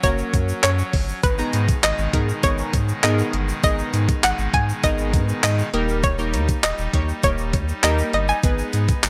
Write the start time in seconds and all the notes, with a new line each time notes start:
Already playing: F#3 C#4
0.03 F#1 A#3 C#4 F#4 A#4 C#5, kick, closed hi-hat, shaker
0.18 shaker
0.34 F#2, kick, closed hi-hat, shaker
0.49 shaker
0.63 F#2 C#5, clap, closed hi-hat, shaker
0.79 shaker
0.93 G1, kick, open hi-hat
1.09 shaker
1.23 G#1 B2 D#3 G#3 D#4 B4, kick, closed hi-hat, shaker
1.38 B3 D#4 G#4 A#5, shaker
1.53 G#2, closed hi-hat, shaker
1.68 kick, closed hi-hat, shaker
1.83 G#1 D#5, clap, closed hi-hat, shaker
1.98 G#1, shaker
2.13 G#2 B3 D#4 G#4 A#4, kick, closed hi-hat
2.29 shaker
2.43 G#1 B3 D#4 G#4 A#4 C#5, kick, closed hi-hat, shaker
2.58 shaker
2.73 G#2, kick, closed hi-hat, shaker
2.89 shaker
3.03 G#2 B3 D#4 G#4 A#4 D#5, clap, closed hi-hat, shaker
3.19 shaker
3.33 G1, closed hi-hat
3.49 shaker
3.63 G#1 B3 D#4 G#4 A#4 D#5, kick, closed hi-hat, shaker
3.79 shaker
3.93 G#2, closed hi-hat, shaker
4.09 kick, closed hi-hat, shaker
4.24 G#1 F#5, clap, closed hi-hat, shaker
4.39 G#1, shaker
4.54 G#2 G#5, kick, closed hi-hat
4.69 shaker
4.83 G#1 B3 D#4 G#4 A#4 D#5, kick, closed hi-hat, shaker
4.98 shaker
5.13 G#2, kick, closed hi-hat, shaker
5.29 shaker
5.43 G#2 D#5, clap, closed hi-hat, shaker
5.59 shaker
5.73 D#1 G3 A#3 D#4 G4 A#4, closed hi-hat
5.89 shaker
6.03 C#5, kick, closed hi-hat, shaker
6.18 A#3 D#4 G4 A#4, shaker
6.33 D#2, closed hi-hat, shaker
6.49 kick, closed hi-hat, shaker
6.63 D#1 D#5, clap, closed hi-hat, shaker
6.78 D#1, shaker
6.93 D#2 A#3 D#4 G4 C#5, kick, closed hi-hat
7.09 shaker
7.23 D#1 A#3 D#4 G4 A#4 C#5, kick, closed hi-hat, shaker
7.38 shaker
7.53 D#2, kick, closed hi-hat, shaker
7.69 shaker
7.83 D#2 A#3 D#4 G4 A#4 D#5, clap, closed hi-hat, shaker
7.99 shaker
8.13 G1 D#5, closed hi-hat
8.29 G#5, shaker
8.43 G#1 G#3 B3 D#4 G#4 B4, kick, closed hi-hat, shaker
8.59 shaker
8.73 G#2, closed hi-hat, shaker
8.88 kick, closed hi-hat, shaker
9.03 G#1, clap, closed hi-hat, shaker